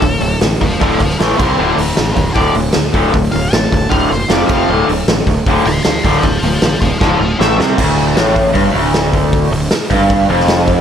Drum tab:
CC |--------------x-|----------------|--------------x-|----------------|
HH |o-o-o-o-o-o-o---|--o-o-o-o-o-o-o-|o-o-o-o-o-o-o---|--o-o-o-o-o-o-o-|
SD |----o------oo---|----o-------o---|----o-------o---|----o-------o---|
BD |o-----o-o-o---o-|------o-o-----o-|o-----o-o-----o-|------o-o-----o-|

CC |----------------|x---------------|----------------|
HH |o-o-o-o---------|--o-o-o-o-o-o-o-|o-o-o-o-o-o-o-o-|
SD |----o---o---o-o-|----o-------o---|----o------oo---|
BD |o-----o-o-------|o-----o-o-----o-|o-----o-o-----o-|